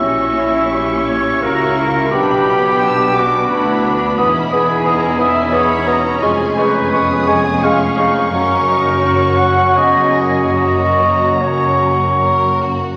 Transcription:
Already playing: C#4 E4 C#5 E5 E6
0.01 A#1 A#2 C#4 F#4 C#6
0.27 A#3
0.37 E4
0.49 C#4
0.71 C#4 E4 G4
0.97 G4
1.07 C#5
1.42 C#2 C#3 A#3 F#4 A#4 E5
1.67 C#5
1.77 E4
1.89 G4
2.10 B1 B2 B3 D4 G4 B5 D6
2.36 F#3
2.47 C#4 E4
2.59 B3
2.81 B3 D4 E6
3.05 B4
3.14 C#4 F#4 D6
3.28 D4
3.49 D2 B3 D4 E4 D5 B5
3.74 B4
3.86 D4
3.97 D4
4.17 E1 E2 B3 C#4 D#4 E4 D#6
4.42 B2
4.52 B3 G#4 D#6
4.64 B3
4.85 B3 C#4 D#4 E4 A#5 D#6
5.09 B4
5.18 B3 E5 G#5 D#6
5.31 D#4
5.52 B3 G#4 C#5 B5 D#6
5.77 B4
5.87 B3 F#4 A#5 D#6
6.00 D#4
6.22 F1 F2 G#3 C#4 F4 G#4 G#5 C#6
6.48 F3
6.57 G#3 D#4 B4 C#6
6.92 G#3 B3 C#4 G#4 C#6 D#6
7.16 C#5
7.27 G#3 B3 G#5 C#6
7.62 G#3 C#4 F5 C#6
7.87 G#4
7.98 G#3 D#4 C#6
8.32 F#1 F#2 F#3 C#4 A#4 C#6
8.56 C#3
8.67 D#4 A#4
8.78 F#3
9.01 C#4 D#4 F#4
9.37 C#4 F#5
9.75 B3 D#4 G#4 D#5 G#5
10.01 F#4
10.15 A#3 E4
10.27 C#5
10.54 F#2 A#3 F#4 D#5 A#5
10.83 C#3
11.12 F#3
11.40 F#3 C#4 C#5 C#6
11.95 F#4
12.21 A#4 C#5
12.62 F#4
12.75 C#5

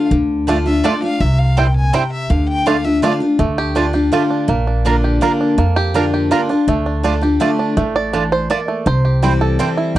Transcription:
0.11 D2 D3
0.47 D3 A3 D4 F4 D5 A5
0.66 D4 F4 E5
0.84 D3 A3 D4 F4 D5 A5
1.02 D4 F4 F5
1.20 C2 C3 E5
1.39 F5
1.57 A#2 G3 C4 E4 C5 G5
1.76 G#5
1.93 C3 G3 C4 E4 C5 G5
2.12 E5
2.30 D2 D3 F5
2.49 G5
2.66 D3 A3 D4 F4 D5 F5 A5
2.85 D4 F4 E5
3.02 D3 A3 D4 F4 D5 F5 A5
3.20 D4 F4
3.39 D2 D3 A3
3.58 G4
3.75 D3 A3 D4 F4 D5 A5
3.93 D4 F4 G4
4.12 D3 A3 D4 F4 D5 A5
4.31 D4
4.48 A#1 A#2 A#3
4.67 D4
4.85 D3 A#3 D4 F4 A#4 F5 A#5
5.04 G4
5.21 D3 A#3 D4 F4 A#4 F5 A#5
5.41 D4
5.58 F2 A#3
5.76 G4
5.94 D3 A#3 D4 F4 A#4 F5 A#5
6.14 G4
6.31 D3 A#3 D4 F4 A#4 F5 A#5
6.49 D4 F4
6.67 D2 D3 A3
6.86 D4
7.03 D3 A3 D4 F4 D5 A5
7.21 D4 F4 G4
7.40 D3 A3 D4 F4 D5 A5
7.59 D4
7.77 A1 A2 A3
7.96 D5
8.13 E3 A3 D4 F4 D5 A5
8.32 C5
8.50 A3 A#3 F4 D5 A5
8.68 A3
8.86 C2 C3 C5
9.05 G4
9.22 E3 G3 C4 E4 C5 G5
9.41 A4
9.59 E3 G3 C4 E4 C5 G5
9.77 E4
9.95 G1

